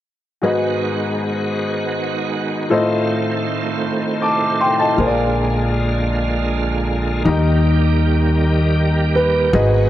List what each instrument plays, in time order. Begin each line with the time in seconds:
0.42 upright piano G#2 F#4 G#4 B4 D#5, tonewheel organ D#3 G#3 B3 F#4
2.70 tonewheel organ A2 A3 C4 F4, upright piano A2 F4 A4 C5 D#5
4.22 upright piano A5 D6
4.61 upright piano G5 C6
4.79 upright piano D#5 A5
4.97 upright bass A#1, upright piano A#2 F4 G#4 A#4 C5, tonewheel organ D3 G#3 A#3
5.07 upright piano D5
7.25 upright bass D#2, tonewheel organ D#3 G3 G4, upright piano D#3 D#4 G4 A#5
7.29 upright piano D#5
9.16 grand piano B4
9.53 upright bass G#1, upright piano G#2 F#4 G#4 B4 D#5, tonewheel organ D#3 G#3 B3 F#4